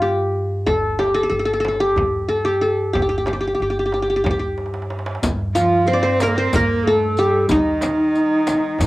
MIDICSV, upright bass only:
0, 0, Header, 1, 2, 480
1, 0, Start_track
1, 0, Tempo, 649351
1, 498, Time_signature, 7, 3, 24, 8
1, 6555, End_track
2, 0, Start_track
2, 0, Title_t, "Upright bass"
2, 0, Program_c, 0, 32
2, 0, Note_on_c, 0, 43, 70
2, 467, Note_off_c, 0, 43, 0
2, 491, Note_on_c, 0, 31, 77
2, 946, Note_off_c, 0, 31, 0
2, 974, Note_on_c, 0, 31, 80
2, 1428, Note_off_c, 0, 31, 0
2, 1451, Note_on_c, 0, 43, 77
2, 2148, Note_off_c, 0, 43, 0
2, 2183, Note_on_c, 0, 31, 71
2, 2634, Note_off_c, 0, 31, 0
2, 2662, Note_on_c, 0, 31, 71
2, 3113, Note_off_c, 0, 31, 0
2, 3139, Note_on_c, 0, 43, 73
2, 3832, Note_off_c, 0, 43, 0
2, 3864, Note_on_c, 0, 43, 82
2, 4793, Note_off_c, 0, 43, 0
2, 4828, Note_on_c, 0, 43, 78
2, 5514, Note_off_c, 0, 43, 0
2, 5551, Note_on_c, 0, 55, 78
2, 6473, Note_off_c, 0, 55, 0
2, 6504, Note_on_c, 0, 43, 85
2, 6555, Note_off_c, 0, 43, 0
2, 6555, End_track
0, 0, End_of_file